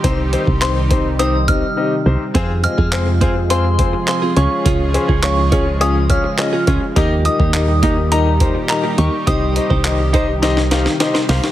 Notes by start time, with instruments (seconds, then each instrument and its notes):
Already playing: analog synth pad D#3 G3 D#4 G4, synth bell C6
0.04 fm bass C2, analog synth pad C3, grand piano C4 D#4 G4 C5, kick, closed hi-hat
0.33 grand piano C4 D#4 G4 C5, closed hi-hat
0.47 fm bass C2, kick
0.61 grand piano C4 D#4 G4 C5, synth bell C6, clap, closed hi-hat
0.90 grand piano C4 D#4 G4 C5, kick, closed hi-hat
1.19 grand piano C4 D#4 G4 C5, synth bell D#6, closed hi-hat
1.48 grand piano C4 D#4 G4 D#5, synth bell F6, kick, closed hi-hat
1.77 grand piano C4 D#4 G4 D#5
2.06 fm bass C2, grand piano C4 D#4 G4 C5
2.34 fm bass F2, analog synth pad F3 G#3 F4 G#4, clean electric guitar C4 F4 G#4, grand piano C4 F4 G#4 C5, kick, closed hi-hat
2.63 grand piano C4 F4 G#4 D#5, synth bell F6, muted clean electric guitar stroke, closed hi-hat
2.78 fm bass F2, clean electric guitar C4 F4 G#4, kick
2.92 grand piano C4 F4 G#4 C5, clap, closed hi-hat
3.07 muted clean electric guitar stroke
3.21 clean electric guitar C4 F4 G#4, grand piano C4 F4 G#4 C5, kick, closed hi-hat
3.36 muted clean electric guitar stroke
3.50 grand piano C4 F4 G#4 C5, synth bell C6, muted clean electric guitar stroke, closed hi-hat
3.64 muted clean electric guitar stroke
3.79 grand piano C4 F4 G#4 C5, kick, closed hi-hat
3.93 muted clean electric guitar stroke
4.08 grand piano C4 F4 G#4 C5, synth bell C6, muted clean electric guitar stroke, clap, closed hi-hat
4.22 clean electric guitar C4 F4 G#4
4.36 fm bass C#2, analog synth pad C#3 G#3, clean electric guitar C#4 F4 G#4, grand piano C#4 F4 G#4 C#5, synth bell C#6, closed hi-hat
4.51 muted clean electric guitar stroke
4.65 fm bass C#2, clean electric guitar C#4 F4 G#4, kick, closed hi-hat
4.94 grand piano C#4 F4 G#4 C5, muted clean electric guitar stroke, closed hi-hat
5.08 fm bass C#2, clean electric guitar C#4 F4 G#4, kick
5.23 grand piano C#4 F4 G#4 C#5, synth bell C#6, muted clean electric guitar stroke, clap, closed hi-hat
5.37 muted clean electric guitar stroke
5.52 clean electric guitar C#4 F4 G#4, grand piano C#4 F4 G#4 C#5, kick, closed hi-hat
5.66 muted clean electric guitar stroke
5.81 grand piano C#4 F4 G#4 C#5, synth bell D#6, muted clean electric guitar stroke, closed hi-hat
5.95 muted clean electric guitar stroke
6.10 grand piano C#4 F4 G#4 C#5, synth bell F6, kick, closed hi-hat
6.24 muted clean electric guitar stroke
6.38 grand piano C#4 F4 G#4 D#5, muted clean electric guitar stroke, clap, closed hi-hat
6.53 clean electric guitar C#4 F4 G#4
6.67 fm bass C#2, clean electric guitar C#4 F4 G#4, grand piano C#4 F4 G#4 C#5, kick, closed hi-hat
6.82 muted clean electric guitar stroke
6.96 fm bass D#2, analog synth pad A#2 D#3 G3 D#4 G4, clean electric guitar A#3 D#4 G4, grand piano D#4 G4 A#4 D#5, kick, closed hi-hat
7.25 grand piano D#4 G4 A#4 D#5, synth bell D#6, muted clean electric guitar stroke, closed hi-hat
7.39 fm bass D#2, clean electric guitar A#3 D#4 G4, kick
7.54 grand piano D#4 G4 A#4 D#5, muted clean electric guitar stroke, clap, closed hi-hat
7.68 muted clean electric guitar stroke
7.83 clean electric guitar A#3 D#4 G4, grand piano D#4 G4 A#4 D#5, kick, closed hi-hat
7.97 muted clean electric guitar stroke
8.12 grand piano D#4 G4 A#4 D#5, synth bell A#5, muted clean electric guitar stroke, closed hi-hat
8.26 muted clean electric guitar stroke
8.40 grand piano D#4 G4 A#4 C5, kick, closed hi-hat
8.55 muted clean electric guitar stroke
8.69 grand piano D#4 G4 A#4 D#5, synth bell A#5, muted clean electric guitar stroke, clap, closed hi-hat
8.83 clean electric guitar A#3 D#4 G4
8.98 fm bass D#2, clean electric guitar A#3 D#4 G4, grand piano D#4 G4 A#4 D#5, synth bell C#6, closed hi-hat
9.12 muted clean electric guitar stroke
9.27 fm bass C2, analog synth pad C3 D#3, clean electric guitar D#4 G4 C5, grand piano D#4 G4 C5 D#5, synth bell D#6, kick, closed hi-hat
9.56 grand piano D#4 G4 C5 D#5, muted clean electric guitar stroke, closed hi-hat
9.70 fm bass C2, clean electric guitar D#4 G4 C5, kick
9.85 grand piano D#4 G4 C5 D#5, muted clean electric guitar stroke, clap, closed hi-hat
9.99 muted clean electric guitar stroke
10.13 clean electric guitar D#4 G4 C5, grand piano D#4 G4 C5 D#5, kick, closed hi-hat
10.28 muted clean electric guitar stroke
10.42 grand piano D#4 G4 C5 D#5, muted clean electric guitar stroke, snare, closed hi-hat
10.57 muted clean electric guitar stroke, snare
10.71 grand piano D#4 G4 C5 F5, snare, closed hi-hat
10.86 muted clean electric guitar stroke, snare
11.00 grand piano D#4 G4 C5 D#5, muted clean electric guitar stroke, snare, closed hi-hat
11.14 clean electric guitar D#4 G4 C5, snare
11.29 fm bass C2, clean electric guitar D#4 G4 C5, grand piano D#4 G4 C5 F5, snare, open hi-hat
11.43 muted clean electric guitar stroke, snare